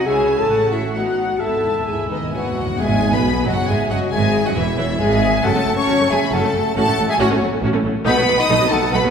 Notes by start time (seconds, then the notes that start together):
0.06 C#2 C#3 C#4 E4 G#4 E5 G#5
0.38 A4 A5
0.49 A1 A2 C#4 F#4 F#5
0.72 E4 E5
0.94 B3 D#4 F#4 F#5
1.39 G#1 E2 G#2 B3 E4 A4 E5 A5
1.48 E2
1.56 E2
1.64 E2
1.72 E2
1.79 E2
1.86 E2 B3 E4 G#4 E5 G#5
1.96 E2
2.04 E2
2.10 E2 D#3 D#4 B4 D#5
2.19 E2
2.24 E2 G#5
2.33 E2 F#3 F#4 B4 F#5
2.44 E2
2.51 E2
2.59 E2 D#5
2.67 E2
2.79 G#1 E2 G#2 G#3 G#4 E5 G#5
3.12 B1 B2 B3 B4 G#5 B5
3.46 F#1 F#2 F#3 F#4 D#5 F#5
3.67 G#1 G#2 G#3 G#4 E5 G#5
3.89 F#1 F#2 F#3 F#4 D#5 F#5
4.11 G#1 G#2 G#3 G#4 E5 G#5
4.44 F#2 F#3 F#4 D#5 F#5
4.55 E1 E2 E3 E4 B4 E5
4.77 E1 E2 E3 E4 C#5 E5
4.98 G#1 G#2 G#3 G#4 E5 G#5
5.42 F#1 F#2 A3 C#4 F#4 A4 F#5 A5
5.55 F#2 A3 C#4
5.66 F#1 F#2 F#3 A3
5.76 C#4 C#5 A5 C#6
5.88 F#1 F#2 C#4 F#4
5.99 F#2 A3 C#4
6.09 F#1 F#2 F#3 G#3 A3 G#4 E5 G#5
6.21 F#2 A3 C#4
6.26 B5
6.32 F#1 F#2 A3 C#4 F#4 A4 F#5 A5
6.43 F#2 A3 C#4
6.54 F#1 F#2 F#3 A3
6.75 A1 A2 A3 C#4 F#4 A4 F#5 A5
6.87 A2 A3 C#4
6.98 A1 A2 F#3 A3
7.07 G#3 G#4 E5 G#5
7.19 A1 A2 F#3 C#4 F#4 C#5 F#5
7.31 A2 A3 C#4
7.41 A1 A2 F#3 A3
7.52 A2 A3 C#4
7.62 A1 A2 C#4 F#4
7.73 A2 A3 C#4
7.84 A1 A2 F#3 A3
8.05 B1 B2 A3 B3 D#4 B4 F#5 B5
8.17 B2 F#3 B3
8.27 B1 B2 D#3 A3
8.38 D#4 D#5 B5 D#6
8.50 B1 B2 A3 D#4
8.60 B2 F#3 B3
8.70 B1 B2 D#3 A3 A4 F#5 A5
8.82 B2 F#3 B3
8.92 B1 B2 A3 B3 D#4 B4 F#5 B5
9.04 B2 F#3 B3